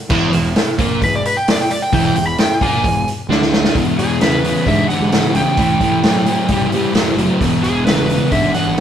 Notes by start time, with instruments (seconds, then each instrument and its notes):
0.10 fingered electric bass E1, distorted electric guitar E2 E3, kick, crash
0.33 fingered electric bass E1, distorted electric guitar E2, open hi-hat
0.56 snare, open hi-hat
0.78 fingered electric bass A#1, distorted electric guitar A#2 A#3, kick, open hi-hat
1.01 fingered electric bass E1, distorted electric guitar E2, electric slide guitar B4, kick, open hi-hat
1.15 electric slide guitar D5
1.25 electric slide guitar B4, open hi-hat
1.37 electric slide guitar G5
1.48 electric slide guitar D5, snare, open hi-hat
1.61 electric slide guitar G5
1.71 electric slide guitar D5, open hi-hat
1.82 electric slide guitar G5
1.92 fingered electric bass E1, distorted electric guitar E2 E3, electric slide guitar G5, kick, open hi-hat
2.05 electric slide guitar G5
2.15 fingered electric bass E1, distorted electric guitar E2, electric slide guitar G5, open hi-hat
2.27 electric slide guitar B5
2.38 electric slide guitar G5, snare, open hi-hat
2.61 fingered electric bass A#1, distorted electric guitar A#2 A#3, electric slide guitar G#5, kick, open hi-hat
2.84 fingered electric bass E1, distorted electric guitar E2, kick, open hi-hat
3.08 open hi-hat
3.29 fingered electric bass D2, distorted electric guitar D3 D4, snare
3.42 snare
3.53 snare
3.64 snare
3.75 fingered electric bass E2, distorted electric guitar E2 B2, kick, open hi-hat
3.97 fingered electric bass E2, distorted electric guitar E2 B2, electric slide guitar G#4, open hi-hat
4.20 distorted electric guitar E2 C#3, electric slide guitar B4, snare, open hi-hat
4.43 distorted electric guitar E2 C#3, open hi-hat
4.66 distorted electric guitar E2 D3, fingered electric bass G#2, electric slide guitar E5, kick, open hi-hat
4.89 distorted electric guitar E2 D3, electric slide guitar F#5, open hi-hat
5.01 fingered electric bass G#2
5.12 distorted electric guitar E2 C#3, snare, open hi-hat
5.34 fingered electric bass A#1, distorted electric guitar E2 C#3, electric slide guitar G5, open hi-hat
5.57 fingered electric bass A1, distorted electric guitar A2 E3, kick, open hi-hat
5.80 distorted electric guitar A2 E3, fingered electric bass A2, kick, open hi-hat
6.03 distorted electric guitar A2 F#3, snare, open hi-hat
6.26 distorted electric guitar A2 F#3, open hi-hat
6.48 fingered electric bass A1, distorted electric guitar A2 G3, kick, open hi-hat
6.72 distorted electric guitar A2 G3, open hi-hat
6.94 fingered electric bass E2, distorted electric guitar A2 F#3, snare, open hi-hat
7.17 fingered electric bass F#1, distorted electric guitar A2 F#3, open hi-hat
7.40 fingered electric bass E1, distorted electric guitar E2 B2, kick, open hi-hat
7.62 fingered electric bass E1, distorted electric guitar E2 B2, electric slide guitar G#4, open hi-hat
7.86 distorted electric guitar E2 C#3, electric slide guitar B4, snare, open hi-hat
8.09 distorted electric guitar E2 C#3, open hi-hat
8.31 fingered electric bass G#1, distorted electric guitar E2 D3, electric slide guitar E5, kick, open hi-hat
8.54 distorted electric guitar E2 D3, electric slide guitar F#5, open hi-hat
8.65 fingered electric bass G#1